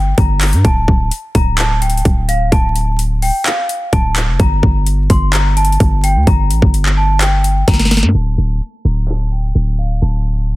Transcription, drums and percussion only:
0.18 kick loud
0.18 closed hi-hat medium
0.41 clap loud
0.41 closed hi-hat medium
0.41 open hi-hat medium
0.53 closed hi-hat medium
0.65 kick loud
0.65 closed hi-hat medium
0.88 kick medium
1.11 closed hi-hat medium
1.35 kick medium
1.35 closed hi-hat medium
1.58 clap loud
1.58 closed hi-hat medium
1.82 closed hi-hat medium
1.90 closed hi-hat medium
1.97 closed hi-hat soft
2.05 kick loud
2.05 closed hi-hat medium
2.29 closed hi-hat medium
2.52 kick loud
2.52 closed hi-hat medium
2.76 closed hi-hat medium
2.99 closed hi-hat medium
3.22 open hi-hat medium
3.46 clap loud
3.46 closed hi-hat medium
3.69 closed hi-hat medium
3.93 kick loud
3.93 closed hi-hat medium
4.16 clap loud
4.16 closed hi-hat medium
4.40 kick loud
4.40 closed hi-hat medium
4.63 kick medium
4.86 closed hi-hat medium
5.10 kick loud
5.10 closed hi-hat medium
5.33 clap loud
5.33 closed hi-hat medium
5.57 closed hi-hat medium
5.65 closed hi-hat medium
5.72 closed hi-hat soft
5.80 kick loud
5.80 closed hi-hat medium
6.04 closed hi-hat medium
6.27 kick loud
6.27 closed hi-hat medium
6.51 closed hi-hat medium
6.62 kick loud
6.74 closed hi-hat medium
6.86 clap medium
7.21 clap loud
7.21 closed hi-hat medium
7.44 closed hi-hat medium
7.68 kick loud
7.68 snare medium
7.68 closed hi-hat medium
7.74 snare medium
7.79 snare medium
7.85 snare medium
7.91 snare loud
7.91 closed hi-hat medium
7.91 open hi-hat medium
7.97 snare medium
8.03 snare loud
8.03 closed hi-hat medium
8.09 snare loud
8.61 closed hi-hat medium
8.85 closed hi-hat medium
9.08 clap loud
9.32 closed hi-hat medium
9.40 closed hi-hat medium
9.47 closed hi-hat soft
9.55 closed hi-hat medium
9.79 closed hi-hat medium
10.02 closed hi-hat medium
10.25 closed hi-hat medium
10.49 closed hi-hat medium

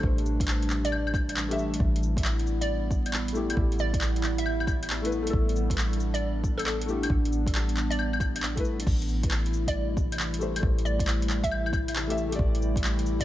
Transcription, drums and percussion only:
0.03 kick loud
0.18 closed hi-hat soft
0.26 cabasa medium
0.40 kick loud
0.40 closed hi-hat medium
0.48 clap loud
0.63 closed hi-hat soft
0.70 clap medium
0.70 cabasa medium
0.85 closed hi-hat medium
0.92 claves medium
1.07 claves medium
1.14 kick loud
1.14 cabasa medium
1.14 claves medium
1.29 closed hi-hat medium
1.29 claves soft
1.37 clap loud
1.51 closed hi-hat soft
1.59 cabasa medium
1.74 closed hi-hat medium
1.80 kick loud
1.96 closed hi-hat soft
2.03 cabasa medium
2.17 kick loud
2.17 closed hi-hat medium
2.25 clap loud
2.40 closed hi-hat soft
2.47 cabasa medium
2.62 closed hi-hat medium
2.91 kick loud
2.91 cabasa medium
3.06 closed hi-hat medium
3.06 claves soft
3.13 clap loud
3.28 closed hi-hat soft
3.35 cabasa medium
3.50 closed hi-hat medium
3.50 claves medium
3.57 kick loud
3.72 closed hi-hat soft
3.79 cabasa medium
3.94 kick loud
3.94 closed hi-hat medium
4.01 clap loud
4.16 closed hi-hat soft
4.24 clap medium
4.24 cabasa medium
4.38 closed hi-hat medium
4.46 claves medium
4.60 claves medium
4.67 kick loud
4.67 cabasa medium
4.67 claves medium
4.83 closed hi-hat medium
4.83 claves soft
4.90 clap loud
5.05 closed hi-hat soft
5.12 cabasa medium
5.27 closed hi-hat medium
5.33 kick loud
5.49 closed hi-hat soft
5.56 cabasa medium
5.70 kick loud
5.70 closed hi-hat medium
5.78 clap loud
5.93 closed hi-hat soft
6.00 cabasa medium
6.15 closed hi-hat medium
6.44 kick loud
6.44 cabasa medium
6.59 closed hi-hat medium
6.59 claves soft
6.66 clap loud
6.81 closed hi-hat soft
6.89 cabasa medium
7.03 closed hi-hat medium
7.03 claves medium
7.10 kick loud
7.25 closed hi-hat soft
7.33 cabasa medium
7.47 kick loud
7.47 closed hi-hat medium
7.55 clap loud
7.69 closed hi-hat soft
7.77 clap medium
7.77 cabasa medium
7.92 closed hi-hat medium
7.99 claves medium
8.13 claves medium
8.20 kick loud
8.20 cabasa medium
8.20 claves medium
8.36 closed hi-hat medium
8.36 claves soft
8.43 clap loud
8.57 kick medium
8.57 closed hi-hat soft
8.65 cabasa medium
8.80 closed hi-hat medium
8.87 kick loud
8.87 crash loud
9.02 closed hi-hat soft
9.09 cabasa medium
9.23 kick loud
9.23 closed hi-hat medium
9.31 clap loud
9.46 closed hi-hat soft
9.53 cabasa medium
9.68 kick medium
9.68 closed hi-hat medium
9.97 kick loud
9.97 cabasa medium
10.12 closed hi-hat medium
10.12 claves soft
10.20 clap loud
10.34 closed hi-hat soft
10.41 cabasa medium
10.56 closed hi-hat medium
10.56 claves medium
10.63 kick loud
10.79 closed hi-hat soft
10.86 cabasa medium
10.99 kick loud
10.99 closed hi-hat medium
11.07 clap loud
11.22 closed hi-hat soft
11.30 clap medium
11.30 cabasa medium
11.44 kick medium
11.44 closed hi-hat medium
11.52 claves medium
11.66 claves medium
11.73 kick loud
11.73 cabasa medium
11.73 claves medium
11.88 closed hi-hat medium
11.88 claves soft
11.96 clap loud
12.10 closed hi-hat soft
12.18 cabasa medium
12.32 closed hi-hat medium
12.39 kick loud
12.55 closed hi-hat soft
12.62 cabasa medium
12.76 kick loud
12.76 closed hi-hat medium
12.84 clap loud
12.99 closed hi-hat soft
13.06 cabasa medium
13.20 kick medium
13.20 closed hi-hat medium

